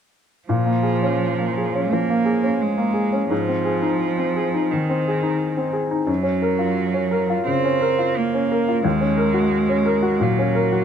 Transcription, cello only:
0.48 F3
1.91 A#3
2.61 G#3
3.30 F3
4.70 D#3
6.09 F#3
7.46 C4
8.18 A#3
8.84 G#3
10.21 F#3

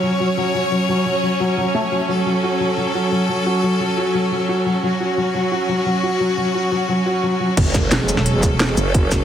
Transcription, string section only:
Already playing: F#3 C#4 C#5
2.09 A4
4.83 F#4
7.57 F#3 C#4 A4

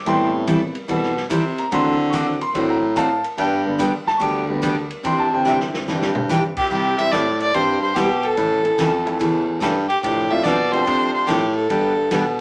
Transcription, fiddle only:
6.57 G4
6.71 G4
6.98 E5
7.12 D5
7.41 D5
7.55 C5
7.82 C5
7.95 G4
8.25 A4
9.88 G4
10.03 G4
10.30 E5
10.43 D5
10.72 C5
11.14 C5
11.27 G4
11.55 A4

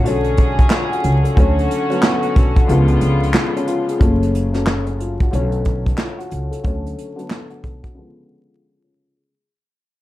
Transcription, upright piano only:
Already playing: F#4
0.04 D3 F#3 A3
0.08 C#4
0.71 F4
0.91 F#4
1.24 A4
1.36 D3 F#3 A3 C#4
1.89 D3 F#3 A3
1.93 B3
2.23 F#4
2.37 A4
2.56 F#4
2.68 C#2 D3 F3 G#3 B3
3.56 C#4
3.67 F4
3.89 G#4
3.98 C#3 F#3 A3 C#4
4.52 C#3 F#3 A3
4.56 C#4
4.87 C#4
4.99 F4
5.22 F#4
5.31 D3 F#3 A3
5.35 C#4
5.98 F4
6.19 F#4
6.51 A4
6.63 D3 F#3 A3
6.67 C#4
7.16 D3 F#3 A3 B3
7.50 F#4
7.64 A4
7.83 F#4
7.95 C#2 D3 F3 G#3
7.99 B3
8.84 C#4
9.16 G#4

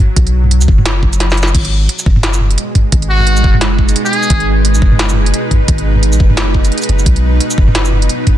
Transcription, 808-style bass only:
0.17 B1
0.61 C#2
0.68 F#1
1.03 F#1
1.55 G#1
2.06 F#1
2.92 G#1
3.37 A#1
3.44 F#1
4.30 G#1
4.75 A#1
4.82 F#1
5.68 G#1
6.13 A#1
6.20 F#1
6.89 F#1
7.06 B1
7.58 F#1

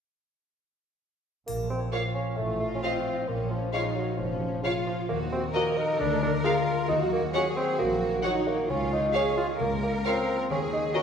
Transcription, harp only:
1.47 A#2
1.63 F3
1.79 C#5
1.93 F5
2.08 F4
2.22 C#5
2.38 A2
2.53 F3
2.68 D#5
2.83 F5
2.98 F4
3.13 D#5
3.28 A#2
3.43 F3
3.58 C#5
3.73 F5
3.88 F4
4.03 C#5
4.18 A#3
4.33 F3
4.48 C#5
4.63 F5
4.79 F4
4.93 C#5
5.10 D#3
5.25 D#4
5.39 F#4
5.55 A#5
5.70 D#5
5.85 F#4
6.00 D3
6.15 G#3
6.29 A#4
6.44 F5
6.60 G#4
6.74 A#4
6.89 D#3
7.04 F#3
7.19 C#5
7.34 F#5
7.49 F#4
7.64 C#5
7.78 D#4
7.94 F#3
8.08 C#5
8.24 F#5
8.39 F#4
8.54 C#5
8.70 C#3
8.84 G#3
8.98 C#5
9.14 F5
9.29 G#4
9.45 C#5
9.59 C#3
9.74 A#3
9.89 F5
10.05 A#4
10.20 F5
10.35 F4
10.50 D#3
10.64 A#3
10.79 D#5
10.94 F#5

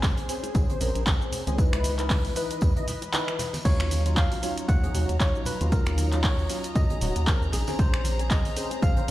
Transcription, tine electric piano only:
3.65 C#5
4.17 F5
4.68 F#5
5.20 C#5
5.46 B4
5.72 A#4
6.24 C#5
6.75 D#5
7.27 A#4
7.53 G#4
7.79 C5
8.31 D#5
8.82 F5

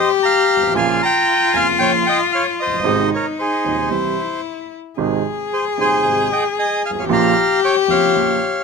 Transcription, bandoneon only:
0.00 C5
0.23 F5 A#5
0.76 F5 G#5
1.03 G5 A#5
1.54 F5 G#5
1.79 C#5 G5
2.07 D#5 G5
2.32 C#5 F5
2.60 C5 D#5
3.14 A#4 C#5
3.39 G#4 C5
5.53 G#4 C5
5.80 G#4 C5
6.32 D#5 G5
6.59 D#5 G#5
6.85 F5 G#5
6.99 C#5 F5
7.13 F5 A#5
7.64 C#5 G5
7.90 C#5 F5

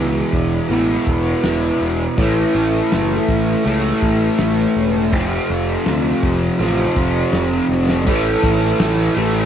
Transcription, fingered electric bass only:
Already playing: C#2
0.33 E1
0.70 A1
1.07 E1
1.44 E1
1.81 E1
2.18 A1
2.55 A1
2.92 F#1
3.28 A1
3.66 C#2
4.02 A1
4.39 A1
4.76 E1
5.13 F1
5.50 F1
5.87 D2
6.23 F1
6.59 A1
6.96 F1
7.33 F1
7.69 F1
8.07 A1
8.43 A1
8.80 A1
9.17 A1

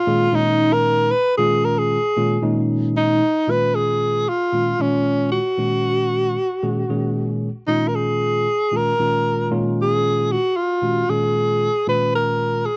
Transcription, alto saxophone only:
Already playing: F4
0.35 D#4
0.73 A#4
1.11 B4
1.38 G#4
1.65 A#4
1.79 G#4
2.97 D#4
3.51 B4
3.75 G#4
4.29 F4
4.82 C#4
5.32 F#4
7.67 D#4
7.88 A#4
7.95 G#4
8.77 A#4
9.82 G#4
10.32 F#4
10.57 F4
11.10 G#4
11.88 B4
12.16 A#4
12.66 G#4

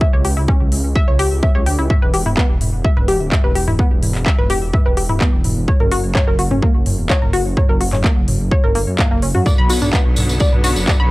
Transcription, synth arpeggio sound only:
0.01 E5
0.13 C#5
0.25 G4
0.37 E4
0.48 C#4
0.96 E5
1.08 C#5
1.19 G4
1.43 E5
1.55 C#5
1.66 G4
1.79 E4
1.90 E5
2.02 B4
2.14 G4
2.26 E4
2.37 B3
2.85 E5
2.97 B4
3.08 G4
3.32 E5
3.44 B4
3.55 G4
3.68 E4
3.79 B3
4.26 E5
4.38 B4
4.50 G4
4.74 E5
4.86 B4
4.97 G4
5.09 E4
5.21 B3
5.68 C#5
5.80 A#4
5.92 F#4
6.15 C#5
6.28 A#4
6.39 F#4
6.51 C#4
6.62 A#3
7.10 C#5
7.22 A#4
7.33 F#4
7.57 C#5
7.69 A#4
7.81 F#4
7.93 C#4
8.04 A#3
8.52 C#5
8.64 A#4
8.75 A#3
8.99 A#3
9.11 A#3
9.22 C#4
9.35 F#4
9.46 D5
9.58 B5
9.70 F#4
9.82 D4
9.93 B3
10.40 D5
10.53 B4
10.64 F#4
10.88 D5
11.00 B5

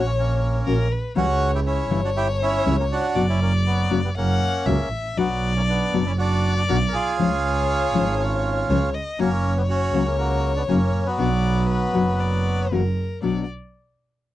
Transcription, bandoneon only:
0.06 A#3 C#4
0.18 A#3 C#4
1.17 C#4 F#4
1.55 E4 G4
1.67 C#4 E4
2.05 D4 F#4
2.17 E4 G4
2.43 C#4 E4
2.80 A#3 C#4
2.92 D4 F#4
3.29 C#4 E4
3.42 A#3 C#4
3.67 F#3 B3
4.04 G3 B3
4.17 A#3 C#4
5.18 F#3 B3
5.56 A#3 C#4
5.68 B3 D4
6.06 C#4 E4
6.18 D4 F#4
6.56 D4 F#4
6.68 F#4 A#4
6.88 A#4
6.93 F4 G#4
8.19 C#4 F4
9.20 A#3 C#4
9.57 G3 B3
9.69 C#4 F#4
10.05 A#3 C#4
10.18 F#3 A#3
10.56 B3 D4
10.68 A#3 C#4
11.06 F#3 B3

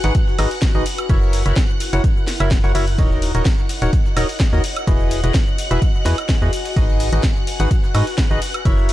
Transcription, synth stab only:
0.04 D#4 F#4 G#4 B4 F#5
0.39 D#4 F#4 G#4 B4 D#5
0.75 D#4 F#4 G#4 B4 D#5
1.09 E4 F#4 A#4 C#5 E5
1.46 E4 F#4 A#4 C#5 E5
1.93 E4 F#4 A#4 C#5 F#5
2.40 E4 F#4 A#4 C#5 E5
2.64 E4 F#4 A#4 C#5 F#5
2.75 E4 F#4 A#4 C#5 E5
2.99 D#4 F#4 A#4 C#5 D#5
3.35 D#4 F#4 A#4 C#5 D#5
3.82 D#4 F#4 A#4 C#5 F#5
4.17 D#4 F#4 A#4 C#5 D#5
4.53 D#4 F#4 A#4 C#5 D#5
4.87 E4 F#4 G#4 B4 D#5
5.24 E4 F#4 G#4 B4 D#5
5.71 E4 F#4 G#4 B4 E5
6.06 E4 F#4 G#4 B4 D#5
6.42 E4 F#4 G#4 B4 D#5
6.76 D#4 F#4 G#4 B4 D#5
7.13 D#4 F#4 G#4 B4 D#5
7.60 D#4 F#4 G#4 B4 F#5
7.95 D#4 F#4 G#4 B4 D#5
8.31 D#4 F#4 G#4 B4 D#5
8.65 E4 F#4 A#4 C#5 E5

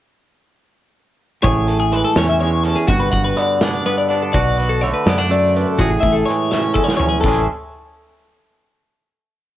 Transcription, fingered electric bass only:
1.44 A1
2.16 E2
2.88 G1
3.12 G1
4.34 B1
5.06 F#2
5.78 A1
6.03 A1
7.23 A1

